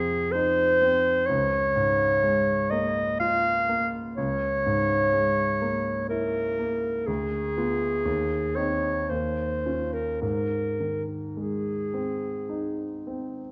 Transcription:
0.00 1.24 F2 soft
0.00 1.30 C3 soft
0.00 0.14 F3 soft
0.00 0.62 C4 soft
0.00 0.33 G#4 medium
0.32 1.10 D#4 soft
0.32 1.28 C5 medium
0.82 1.28 C4 soft
1.26 4.14 C#2 soft
1.26 2.72 C#5 medium
1.76 2.53 G#2 soft
2.23 3.01 G#3 soft
2.71 3.50 A#3 soft
2.71 3.19 D#5 medium
3.20 3.98 F4 soft
3.20 3.89 F5 medium
3.69 4.17 A#3 soft
4.17 7.04 C#2 soft
4.17 6.06 C#5 medium
4.66 5.43 G#2 soft
5.13 5.91 G#3 soft
5.61 6.40 A#3 soft
6.09 6.89 E4 soft
6.09 7.09 A#4 medium
6.59 7.08 A#3 soft
7.07 8.03 D2 soft
7.07 8.57 G#4 medium
7.57 8.02 B3 soft
7.57 8.02 F4 soft
8.05 9.06 D#2 soft
8.56 9.06 C4 soft
8.56 9.06 D#4 soft
8.56 9.11 C#5 medium
9.10 10.19 D#2 soft
9.10 9.95 C5 medium
9.66 10.19 C#4 soft
9.66 10.19 F4 soft
9.93 10.21 A#4 soft
10.22 13.52 G#2 soft
10.22 11.04 A#4 medium
10.80 11.71 D#3 soft
11.37 12.27 G#3 soft
11.37 13.02 G#4 soft
11.94 12.83 C4 soft
12.49 13.40 D#4 soft
13.07 13.52 C4 soft

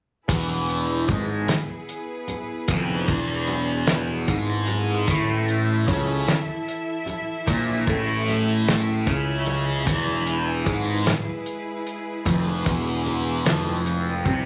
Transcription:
0.28 1.04 E1 medium
0.28 1.07 E2 medium
0.28 1.07 E3 loud
0.28 5.03 B3 medium
0.28 14.46 E4 medium
0.28 5.04 G#4 medium
0.28 5.03 B4 medium
0.28 kick loud
0.28 closed hi-hat medium
0.28 high conga medium
0.28 low conga soft
0.48 low conga medium
0.69 closed hi-hat medium
1.08 1.46 G#1 medium
1.08 1.47 G#2 medium
1.08 1.48 G#3 loud
1.08 kick loud
1.08 closed hi-hat medium
1.08 low conga medium
1.47 snare loud
1.47 closed hi-hat loud
1.47 high conga medium
1.67 low conga medium
1.89 closed hi-hat medium
2.28 closed hi-hat medium
2.28 low conga medium
2.68 3.05 F1 loud
2.68 3.08 F2 loud
2.68 3.08 F3 loud
2.68 kick loud
2.68 closed hi-hat loud
2.68 high conga loud
2.68 low conga soft
2.88 low conga medium
3.08 4.24 E1 medium
3.08 4.27 E2 medium
3.08 4.28 E3 loud
3.08 kick loud
3.08 closed hi-hat medium
3.47 closed hi-hat medium
3.47 low conga medium
3.87 snare loud
3.87 closed hi-hat medium
3.87 high conga loud
4.08 low conga medium
4.28 5.04 G#1 medium
4.28 5.07 G#2 medium
4.28 5.07 G#3 loud
4.28 kick medium
4.28 closed hi-hat medium
4.67 closed hi-hat medium
4.67 low conga medium
5.08 5.83 A1 loud
5.08 5.87 A2 loud
5.08 9.84 E3 medium
5.08 5.87 A3 loud
5.08 7.46 A4 medium
5.08 9.83 E5 medium
5.08 kick loud
5.08 closed hi-hat medium
5.08 high conga loud
5.08 low conga soft
5.27 low conga medium
5.48 closed hi-hat medium
5.87 6.25 C#2 loud
5.87 6.26 C#3 medium
5.87 6.27 C#4 loud
5.87 kick loud
5.87 closed hi-hat medium
5.87 low conga loud
6.28 snare loud
6.28 closed hi-hat medium
6.28 high conga medium
6.46 low conga medium
6.68 closed hi-hat medium
7.06 closed hi-hat medium
7.06 low conga medium
7.46 7.84 A#1 loud
7.46 7.86 A#2 medium
7.46 7.86 A#3 loud
7.46 14.46 G#4 medium
7.46 kick loud
7.46 closed hi-hat medium
7.46 high conga medium
7.46 low conga soft
7.68 low conga medium
7.87 9.03 A1 medium
7.87 9.06 A2 medium
7.87 9.07 A3 loud
7.87 kick loud
7.87 closed hi-hat medium
8.28 closed hi-hat medium
8.28 low conga medium
8.68 snare loud
8.68 closed hi-hat medium
8.68 high conga medium
8.68 low conga soft
8.88 low conga medium
9.06 9.83 C#2 medium
9.06 9.85 C#3 medium
9.06 9.85 C#4 loud
9.06 kick loud
9.06 closed hi-hat medium
9.46 closed hi-hat medium
9.46 low conga medium
9.85 10.62 E1 medium
9.85 10.65 E2 medium
9.85 10.65 E3 loud
9.85 14.46 G#3 medium
9.85 kick medium
9.85 closed hi-hat medium
9.85 high conga loud
9.85 low conga soft
9.89 14.46 B4 medium
10.06 low conga medium
10.27 closed hi-hat medium
10.66 11.03 G#1 medium
10.66 11.05 G#2 medium
10.66 11.05 G#3 loud
10.66 kick loud
10.66 closed hi-hat medium
10.66 low conga medium
11.06 snare loud
11.06 closed hi-hat medium
11.06 high conga loud
11.25 low conga medium
11.46 closed hi-hat medium
11.87 closed hi-hat medium
12.25 12.63 F1 medium
12.25 12.64 F2 loud
12.25 12.64 F3 loud
12.25 kick loud
12.25 closed hi-hat medium
12.25 high conga loud
12.25 low conga soft
12.46 low conga medium
12.65 13.41 E1 medium
12.65 13.44 E2 medium
12.65 13.44 E3 loud
12.65 kick loud
12.65 closed hi-hat medium
13.06 closed hi-hat medium
13.06 low conga medium
13.46 14.21 F1 medium
13.46 14.24 F2 medium
13.46 14.24 F3 loud
13.46 snare loud
13.46 closed hi-hat medium
13.46 high conga loud
13.67 low conga medium
13.86 closed hi-hat medium
14.26 14.46 C2 medium
14.26 14.46 C3 loud
14.26 14.46 C4 loud
14.26 kick medium
14.26 closed hi-hat medium
14.26 low conga loud

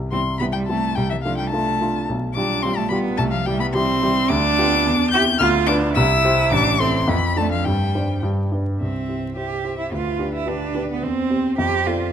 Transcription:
0.00 0.11 C2 medium
0.11 0.37 G3 soft
0.11 0.20 C4 medium
0.11 0.38 C4 soft
0.11 0.38 E4 medium
0.11 0.38 C6 medium
0.39 0.66 G3 medium
0.39 0.47 B3 medium
0.39 0.66 C4 medium
0.39 0.66 E4 medium
0.39 0.45 B5 medium
0.52 0.69 G3 medium
0.52 0.58 G5 medium
0.67 0.94 G3 medium
0.67 0.96 A3 medium
0.67 0.94 C4 soft
0.67 0.94 E4 medium
0.67 0.97 A5 medium
0.96 1.24 C2 medium
0.96 1.02 G3 medium
0.96 1.10 G5 loud
1.10 1.17 E3 medium
1.10 1.16 E5 medium
1.23 1.38 F3 medium
1.23 1.50 A3 medium
1.23 1.50 D4 medium
1.23 1.50 F4 medium
1.23 1.37 F5 medium
1.37 1.52 G3 medium
1.37 1.49 G5 medium
1.50 2.07 A3 medium
1.50 1.78 A3 medium
1.50 1.78 D4 medium
1.50 2.05 A5 medium
1.54 1.78 F4 medium
1.81 2.06 A3 medium
1.81 2.06 D4 medium
1.81 2.06 F4 medium
2.09 2.36 B1 medium
2.34 2.61 G3 medium
2.34 2.64 D4 medium
2.34 2.61 F4 medium
2.34 2.64 D6 medium
2.38 2.62 G4 medium
2.62 2.89 G3 medium
2.62 2.76 C4 medium
2.62 2.89 F4 medium
2.62 2.90 G4 medium
2.62 2.78 C6 loud
2.77 2.91 A3 medium
2.77 2.89 A5 loud
2.89 3.16 G3 medium
2.89 3.20 B3 medium
2.89 3.16 F4 medium
2.89 3.17 G4 medium
2.89 2.97 B5 medium
3.17 3.46 C2 medium
3.17 3.35 A3 medium
3.17 3.23 A5 loud
3.32 3.47 F3 medium
3.32 3.47 F5 medium
3.46 3.72 G3 medium
3.46 3.62 G3 medium
3.46 3.72 E4 medium
3.46 3.72 G4 medium
3.46 3.59 G5 loud
3.60 3.74 B3 medium
3.60 3.66 B5 loud
3.73 4.00 G3 medium
3.73 4.32 C4 loud
3.73 4.00 E4 medium
3.73 4.00 G4 medium
3.73 4.30 C6 loud
4.02 4.28 G3 medium
4.02 4.28 E4 medium
4.02 4.28 G4 medium
4.28 4.57 D2 medium
4.28 5.13 D4 loud
4.28 5.10 D6 loud
4.58 4.83 B3 medium
4.58 4.83 F4 medium
4.58 4.83 G4 medium
4.86 5.13 E2 loud
5.11 5.39 C4 medium
5.11 5.39 E4 medium
5.11 5.21 G4 loud
5.11 5.38 G6 loud
5.15 5.39 G4 medium
5.39 5.68 D2 medium
5.39 5.69 F4 loud
5.39 5.47 F6 loud
5.66 5.95 D4 loud
5.66 5.93 D4 medium
5.66 5.94 F4 medium
5.66 5.94 B4 medium
5.66 5.74 D6 loud
5.95 6.24 C2 loud
5.95 6.54 E4 loud
5.95 6.50 E6 loud
6.24 6.50 E4 medium
6.24 6.50 G4 medium
6.24 6.50 C5 medium
6.51 6.79 A1 medium
6.51 6.81 D4 loud
6.51 6.82 D6 loud
6.80 7.09 C4 medium
6.80 7.06 E4 medium
6.80 7.06 A4 medium
6.80 7.06 C5 medium
6.80 7.10 C6 loud
7.08 7.36 F2 medium
7.08 7.17 B3 medium
7.08 7.39 B5 loud
7.37 7.52 A3 medium
7.37 7.63 D4 medium
7.37 7.63 A4 medium
7.37 7.63 D5 medium
7.37 7.51 A5 loud
7.52 7.68 F3 medium
7.52 7.67 F5 medium
7.65 7.94 G2 medium
7.65 8.24 G3 medium
7.65 8.23 G5 medium
7.95 8.21 D4 medium
7.95 8.21 C5 medium
7.95 8.21 D5 medium
8.23 8.51 G2 medium
8.52 8.78 D4 medium
8.52 8.78 B4 soft
8.52 8.78 D5 medium
8.80 9.08 C2 soft
8.80 9.33 C4 medium
8.80 9.33 E5 soft
9.08 9.34 E4 soft
9.08 9.34 G4 soft
9.08 9.35 C5 soft
9.36 9.61 E4 soft
9.36 9.62 G4 soft
9.36 9.78 G4 medium
9.36 9.62 C5 soft
9.36 9.94 E5 soft
9.64 9.89 E4 soft
9.64 9.89 G4 soft
9.64 9.90 C5 soft
9.79 9.92 E4 medium
9.92 10.19 D2 medium
9.92 10.33 F4 medium
9.92 10.47 B4 medium
10.19 10.44 D4 soft
10.19 10.44 G4 soft
10.19 10.45 B4 soft
10.35 10.50 E4 medium
10.46 10.72 D4 soft
10.46 10.90 D4 medium
10.46 10.72 G4 medium
10.46 11.04 B4 medium
10.46 10.72 B4 medium
10.75 11.00 D4 medium
10.75 11.00 G4 soft
10.75 11.00 B4 medium
10.91 11.05 B3 medium
11.02 11.29 E2 medium
11.02 11.58 C4 medium
11.02 11.57 C5 medium
11.30 11.56 C4 soft
11.30 11.56 G4 soft
11.30 11.56 C5 medium
11.57 11.86 F2 medium
11.57 11.88 G4 loud
11.57 12.12 C5 medium
11.87 12.12 C4 soft
11.87 12.12 F4 medium
11.87 12.12 A4 soft
11.87 12.12 D5 medium

